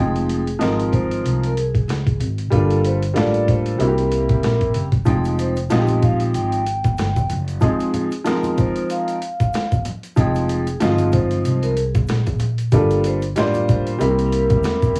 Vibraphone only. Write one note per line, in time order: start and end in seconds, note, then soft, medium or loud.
0.00 0.95 G#4 medium
0.93 1.44 C5 loud
1.45 1.58 A#4 medium
1.58 2.17 G#4 medium
2.55 2.86 A4 medium
2.85 3.14 C5 medium
3.16 3.46 D5 medium
3.48 3.81 C5 medium
3.81 4.72 A#4 medium
5.08 5.22 G#4 medium
5.39 5.54 C5 medium
5.71 6.04 D#5 medium
6.03 6.17 F5 medium
6.35 7.27 G5 loud
7.63 8.54 G#4 medium
8.58 8.91 C5 medium
8.91 9.82 F5 medium
10.18 11.17 G#4 medium
11.13 11.65 C5 medium
11.63 11.77 A#4 medium
11.76 12.37 G#4 medium
12.75 13.07 A4 medium
13.06 13.20 C5 loud
13.38 13.70 D5 loud
13.71 13.85 C5 loud
14.02 14.93 A#4 medium